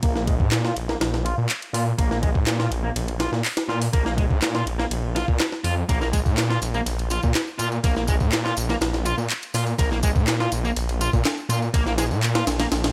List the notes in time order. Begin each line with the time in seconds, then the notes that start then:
0.03 A#1 A#3, kick, ride
0.16 A#3, snare
0.27 G#3, kick, ride
0.40 A#2, kick
0.52 snare, clap, ride
0.64 F4, snare
0.76 A#1, ride
0.89 A#3, snare
1.00 A#1, snare, ride
1.14 snare
1.25 F4, ride
1.38 A#2
1.49 clap, ride
1.62 ride
1.73 A#2 F4, open hi-hat
1.98 A#1 A#3, kick, ride
2.11 A#3, snare
2.22 G#3, kick, ride
2.35 A#2, kick
2.47 snare, clap, ride
2.60 F4, snare
2.71 A#1, ride
2.84 A#3
2.96 A#1, ride
3.08 ride
3.20 F4, snare, ride
3.32 A#2, snare
3.45 clap, open hi-hat
3.57 snare, ride
3.69 A#2 F4, snare
3.82 open hi-hat
3.93 A#1 A#3, kick, ride
4.06 A#3, snare
4.18 G#3, kick, ride
4.31 A#2, kick
4.42 snare, clap, ride
4.55 F4, snare
4.66 A#1, ride
4.79 A#3, snare
4.91 A#1, ride
5.15 F4, snare, ride
5.28 A#2, kick
5.40 snare, clap, ride
5.52 snare
5.64 F2 F4, open hi-hat
5.89 A#1 A#3, kick, ride, tambourine
6.01 A#3, snare, tambourine
6.13 G#3, kick, ride, tambourine
6.26 A#2, kick, tambourine
6.38 snare, clap, ride, tambourine
6.50 F4, snare, tambourine
6.62 A#1, ride, tambourine
6.74 A#3, tambourine
6.86 A#1, ride, tambourine
6.99 ride, tambourine
7.10 F4, ride, tambourine
7.23 A#2, kick, tambourine
7.35 snare, clap, ride, tambourine
7.47 tambourine
7.59 A#2 F4, ride, tambourine
7.72 tambourine
7.84 A#1 A#3, kick, ride, tambourine
7.96 A#3, snare, tambourine
8.07 G#3, kick, ride, tambourine
8.20 A#2, kick, tambourine
8.32 snare, clap, ride, tambourine
8.45 F4, snare, tambourine
8.57 A#1, ride, tambourine
8.69 A#3, snare, tambourine
8.81 A#1, snare, ride, tambourine
8.94 snare, tambourine
9.05 F4, ride, tambourine
9.18 A#2, tambourine
9.30 clap, ride, tambourine
9.42 ride, tambourine
9.54 A#2 F4, open hi-hat, tambourine
9.66 tambourine
9.78 A#1 A#3, kick, ride, tambourine
9.91 A#3, snare, tambourine
10.03 G#3, kick, ride, tambourine
10.15 A#2, kick, tambourine
10.27 snare, clap, ride, tambourine
10.40 F4, snare, tambourine
10.52 A#1, ride, tambourine
10.65 A#3, tambourine
10.76 A#1, ride, tambourine
10.89 ride, tambourine
11.01 F4, ride, tambourine
11.13 A#2, kick, tambourine
11.25 snare, clap, ride, tambourine
11.37 tambourine
11.49 A#2 F4, ride, tambourine
11.62 tambourine
11.74 A#1 A#3, kick, ride, tambourine
11.86 A#3, snare, tambourine
11.98 G#3, snare, ride, tambourine
12.10 A#2, tambourine
12.23 clap, ride, tambourine
12.35 F4, snare, ride, tambourine
12.47 A#1, snare, ride, tambourine
12.60 A#3, snare, ride, tambourine
12.71 A#1, snare, ride, tambourine
12.84 snare, ride, tambourine